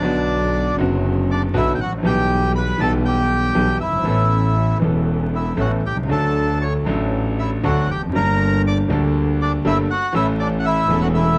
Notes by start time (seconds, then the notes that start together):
Already playing: D4 D5
0.00 B1 B2 D3 F#3 B3 F#4
0.76 F#1 F#2 D3 F#3 B3
0.81 F#4
1.31 D4 D5
1.53 B1 B2 D3 F#3 B3 E4 F#4 E5
1.75 G5
1.79 A1 F#4 F#5
1.86 G#1
1.92 A1
1.98 A#1
2.03 B1 B2 E3 G3 B3 G4 G5
2.08 G4
2.55 B4 B5
2.78 B1 B2 E3 G3 B3 A5
2.82 G4 A4
3.05 G4 G5
3.55 B1 B2 E3 G3 B3 G4
3.80 G1 E4 E5
3.87 F#1
3.92 G1
3.99 G#1
4.03 A1 A2 E3 B3 C#4
4.07 A4
4.80 E1 E2 E3 B3 C#4
4.84 A4
5.35 E4 E5
5.57 A1 A2 E3 B3 C#4 F#4 A4 F#5
5.84 C2 G4 G5
5.90 B1
5.97 C2
6.03 C#2
6.08 D2 D3 F#3 A3 D4
6.12 A4 A5
6.62 C#5 C#6
6.85 A1 A2 F#3 A3 D4
6.89 A4
7.39 E4 E5
7.63 D2 D3 F#3 A3 D4 F#4 A4 F#5
7.89 F1 G4 G5
7.95 E2
8.02 F2
8.09 F#2 G3
8.14 G1 G2 A#3 D4 A#4 A#5
8.67 D5 D6
8.88 D2 D3 G3 A#3 D4
8.92 A4
9.41 D4 D5
9.65 G1 G2 G3 A#3 D4 E4 A4 E5
9.91 F#4 F#5
10.13 A1 A2 E3 A3 C#4 E4 A4 E5
10.39 D4 D5
10.59 F#5
10.65 E4 E5
10.88 E1 E2 E3 A3 C#4
10.92 A4
11.01 F#4 F#5
11.14 E4 E5